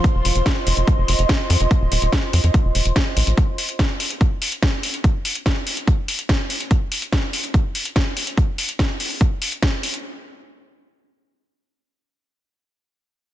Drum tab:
HH |x-oxx-oxx-oxx-ox|x-oxx-oxx-oxx-ox|x-oxx-oxx-oxx-ox|x-oxx-oxx-oxx-ox|
SD |----o-------o---|----o-------o---|----o-------o---|----o-------o---|
BD |o---o---o---o---|o---o---o---o---|o---o---o---o---|o---o---o---o---|

HH |x-oxx-oxx-oxx-ox|x-oxx-oox-oxx-ox|----------------|----------------|
SD |----o-------o---|----o-------o---|----------------|----------------|
BD |o---o---o---o---|o---o---o---o---|----------------|----------------|